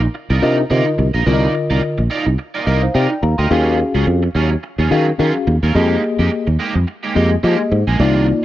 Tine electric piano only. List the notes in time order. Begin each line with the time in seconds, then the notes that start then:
0.42 D4 F4 A#4 D#5
0.70 D3 F4 A#4 D#5
1.26 D3 F4 A#4 D5
1.33 D#5
2.67 A#4 D#5
2.82 C5 F5
2.95 D5 G5
3.23 F5 A#5
3.38 G5 C6
3.50 C#4 F#4 G#4 F5
4.90 C#4 F#4 G#4 F5
5.18 C#4 F#4 G#4 F5
5.75 A#3 G4 G#4 D#5
7.15 A#3 G4 G#4 D#5
7.43 A#3 G4 G#4 D#5
7.99 A#3 D#4 F4 D5